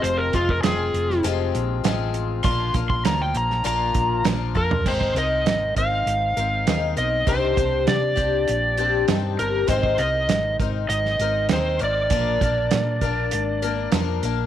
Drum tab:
CC |----------------|----------------|x---------------|----------------|
HH |x-x-x-x-x-x-x-x-|x-x-x-x-x-x-x---|--x-x-x-x-x-x-x-|x-x-x-x-x-x-x-x-|
SD |----o--o----o---|----o--o----o---|----o-------o---|----o-------o---|
FT |----------------|---------------o|----------------|----------------|
BD |--oo------------|o-oo------o---o-|oo----o---------|o-o---o---------|

CC |----------------|----------------|
HH |x-x-x-x-x-x-x-x-|x-x-x-x-x-x-x-x-|
SD |----o----o--o---|----o-------o---|
FT |----------------|----------------|
BD |oo----o---------|o-o---o---------|